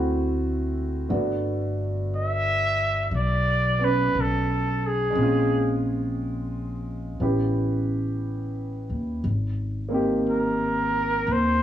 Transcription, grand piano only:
0.00 1.07 A3 medium
0.00 1.09 C4 soft
0.00 1.10 E4 soft
0.00 1.09 F#4 medium
1.09 5.15 A3 soft
1.09 3.77 B3 soft
1.09 5.15 D4 soft
1.09 5.16 F#4 soft
3.79 5.15 B3 soft
3.79 5.17 C#4 soft
5.10 7.17 G#3 soft
5.14 7.19 C4 soft
5.14 7.20 C#4 soft
5.22 7.22 F4 medium
7.20 9.24 B3 soft
7.20 9.25 C#4 soft
7.20 9.25 E4 soft
7.20 9.25 G4 soft
9.88 11.63 A#3 soft
9.88 11.63 C4 soft
9.88 11.63 D#4 soft
9.94 11.63 G4 medium

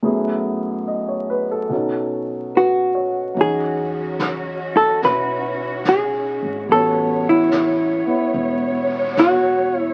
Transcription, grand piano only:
0.03 1.70 F#2 soft
0.03 1.69 F#3 soft
0.03 1.70 A3 soft
0.03 1.70 B3 soft
0.03 1.70 E4 soft
0.03 1.71 G#4 soft
0.88 1.26 D#5 soft
1.09 1.44 C#5 soft
1.30 1.55 B4 soft
1.51 1.73 A4 soft
1.69 3.35 B2 soft
1.69 3.33 F#3 soft
1.69 3.35 C#4 soft
1.74 3.37 D#4 soft
1.74 3.38 A4 soft
2.55 3.19 B4 soft
2.95 3.53 C#5 soft
3.34 6.68 F#3 soft
3.34 5.02 C#4 soft
3.34 6.70 D#4 soft
3.40 6.71 F#4 soft
5.04 6.69 C#4 soft
5.04 6.71 E4 soft
6.66 9.94 G3 soft
6.70 8.04 B3 soft
6.70 9.94 C#4 soft
6.77 9.94 F#4 soft
8.06 9.94 B3 soft
8.06 9.94 E4 soft

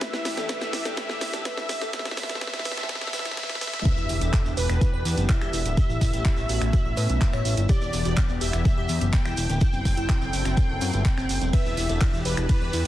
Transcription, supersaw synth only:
0.01 0.47 E5 loud
0.49 0.95 E5 loud
0.97 1.43 E5 loud
1.45 1.91 E5 loud
1.93 2.16 E5 loud
2.17 2.39 E5 loud
2.41 2.63 E5 loud
2.65 2.87 E5 loud
2.89 3.11 E5 loud
3.13 3.35 E5 loud
3.37 3.59 E5 loud
3.61 3.83 E5 loud
3.85 4.48 E5 loud
4.57 5.20 B4 loud
5.29 7.60 E5 loud
7.69 8.32 D5 loud
8.41 9.04 E5 loud
9.13 11.44 G5 loud
11.53 12.16 E5 loud
12.25 12.87 B4 loud

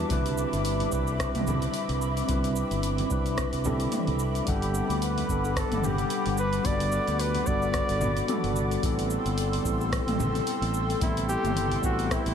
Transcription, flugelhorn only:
4.49 5.04 G4 medium
5.03 5.59 B4 loud
5.58 5.86 A4 medium
5.85 6.38 G4 medium
6.39 6.67 B4 loud
6.66 7.22 D5 loud
7.20 7.48 B4 loud
7.47 8.56 D5 loud
11.02 11.27 E4 loud
11.29 11.80 G4 loud
11.85 12.13 F#4 loud
12.12 12.34 E4 loud

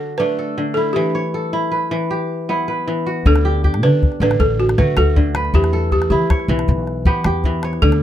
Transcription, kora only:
0.00 0.56 D3 medium
0.00 0.19 D4 medium
0.00 0.15 E4 medium
0.00 1.27 F#4 medium
0.00 0.38 A4 medium
0.20 2.19 A3 medium
0.20 1.21 D4 medium
0.39 1.34 A4 medium
0.58 1.01 D3 medium
0.77 1.53 E4 medium
0.96 1.90 E3 medium
1.15 2.30 C#5 medium
1.34 2.66 A4 medium
1.53 2.49 E4 medium
1.71 2.67 B4 medium
1.91 2.86 E3 medium
2.11 3.12 G4 medium
2.49 4.35 B3 medium
2.49 4.06 E4 soft
2.68 3.91 B4 medium
2.88 3.30 E3 medium
3.06 3.51 F#4 medium
3.26 4.20 D3 medium
3.45 3.64 G4 medium
3.64 4.84 G4 medium
3.83 5.51 D4 medium
4.21 5.15 D3 medium
4.78 6.78 A3 medium
4.78 4.97 F#4 medium
4.98 6.44 F#4 medium
5.16 5.58 D3 medium
5.36 6.59 B4 medium
5.54 6.48 E3 medium
5.73 5.92 A4 medium
5.92 7.24 A4 medium
6.12 7.68 E4 medium
6.30 7.45 C#5 medium
6.49 7.44 E3 medium
7.06 8.03 B3 medium
7.06 7.26 G4 medium
7.26 8.02 G4 medium
7.45 7.87 E3 medium
7.64 8.03 C#5 medium
7.83 8.03 D3 medium

